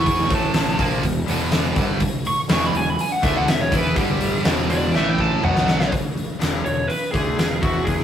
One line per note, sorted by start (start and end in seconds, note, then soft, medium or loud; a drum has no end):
0.00 0.27 E2 medium
0.00 0.28 E3 medium
0.00 0.28 B3 medium
0.00 0.29 E4 medium
0.00 0.31 C#6 medium
0.06 kick loud
0.06 open hi-hat medium
0.19 snare soft
0.28 0.75 A1 medium
0.28 0.77 A2 medium
0.28 0.77 E3 loud
0.28 0.77 A3 loud
0.28 kick loud
0.28 open hi-hat medium
0.35 0.80 A5 loud
0.54 snare loud
0.54 open hi-hat medium
0.77 1.02 A#1 loud
0.77 1.02 A#2 medium
0.77 1.02 F3 medium
0.77 1.02 A#3 loud
0.77 kick medium
0.77 open hi-hat medium
1.02 1.26 E1 medium
1.02 1.22 E2 medium
1.02 1.22 B2 medium
1.02 kick medium
1.02 open hi-hat medium
1.25 1.73 E1 medium
1.25 1.74 E2 medium
1.25 1.75 B2 medium
1.25 1.75 E3 medium
1.25 snare soft
1.25 open hi-hat medium
1.30 1.77 B2 medium
1.30 1.77 E3 loud
1.52 snare loud
1.52 open hi-hat medium
1.75 1.99 G1 loud
1.75 1.99 G2 medium
1.75 2.00 D3 medium
1.75 2.00 G3 medium
1.75 kick loud
1.75 open hi-hat medium
2.00 kick loud
2.00 open hi-hat medium
2.25 2.38 C#6 loud
2.25 open hi-hat medium
2.49 2.73 E1 medium
2.49 2.73 E2 medium
2.49 2.73 B2 loud
2.49 2.73 E3 loud
2.49 2.66 C#6 loud
2.49 snare loud
2.49 open hi-hat medium
2.66 2.76 B5 medium
2.73 2.96 E1 medium
2.73 2.94 E2 medium
2.73 2.94 B2 medium
2.73 2.87 G#5 medium
2.73 open hi-hat medium
2.90 3.01 B5 loud
2.99 3.12 G#5 medium
2.99 open hi-hat medium
3.12 3.23 F#5 loud
3.23 3.45 D2 medium
3.23 3.46 D3 medium
3.23 3.46 A3 loud
3.23 3.47 D4 medium
3.23 3.35 E5 medium
3.23 kick loud
3.23 snare soft
3.23 open hi-hat medium
3.37 3.49 F#5 medium
3.46 3.69 E1 medium
3.46 3.67 E2 medium
3.46 3.67 B2 medium
3.46 3.61 E5 loud
3.46 snare loud
3.46 open hi-hat medium
3.61 3.75 C#5 loud
3.71 3.94 E2 loud
3.71 3.94 E3 loud
3.71 3.95 B3 loud
3.71 3.95 E4 loud
3.71 kick loud
3.71 open hi-hat medium
3.75 3.97 B4 medium
3.94 4.41 G1 loud
3.94 4.43 G2 medium
3.94 4.43 D3 loud
3.94 4.44 G3 loud
3.94 4.44 G4 loud
3.94 kick loud
3.94 open hi-hat medium
4.21 open hi-hat medium
4.44 4.90 E1 medium
4.44 4.93 E2 medium
4.44 4.93 B2 medium
4.44 4.93 E3 loud
4.44 snare loud
4.44 open hi-hat medium
4.70 4.93 D5 loud
4.70 open hi-hat medium
4.93 5.39 A1 medium
4.93 5.41 A2 loud
4.93 5.42 E3 loud
4.93 5.42 A3 loud
4.93 5.09 E5 medium
4.93 snare medium
5.09 5.20 G5 medium
5.18 5.43 A5 loud
5.18 kick medium
5.41 5.89 B1 medium
5.41 5.90 B2 medium
5.41 5.90 F#3 loud
5.41 5.91 B3 loud
5.41 5.91 F#5 loud
5.41 mid tom medium
5.56 snare medium
5.68 snare loud
5.80 snare medium
5.92 kick loud
5.92 open hi-hat medium
6.17 open hi-hat medium
6.39 6.64 E1 medium
6.39 6.63 E2 medium
6.39 6.64 B2 medium
6.39 6.64 E3 loud
6.39 snare medium
6.39 open hi-hat medium
6.64 6.88 E1 medium
6.64 6.84 E2 medium
6.64 6.84 B2 medium
6.64 6.90 C#5 medium
6.64 open hi-hat medium
6.87 7.11 B4 medium
6.87 open hi-hat medium
7.12 7.36 D2 medium
7.12 7.37 D3 medium
7.12 7.38 A3 medium
7.12 7.38 D4 medium
7.12 7.37 G#4 medium
7.12 kick loud
7.12 snare soft
7.12 open hi-hat medium
7.37 7.60 E1 medium
7.37 7.57 E2 medium
7.37 7.58 B2 medium
7.37 7.61 G#4 medium
7.37 snare loud
7.37 open hi-hat medium
7.61 8.04 E2 medium
7.61 8.04 E3 medium
7.61 8.04 B3 medium
7.61 8.04 E4 medium
7.61 7.85 F#4 medium
7.61 kick loud
7.61 open hi-hat soft
7.84 8.04 G#4 medium
7.84 kick loud
7.84 open hi-hat medium
7.99 snare soft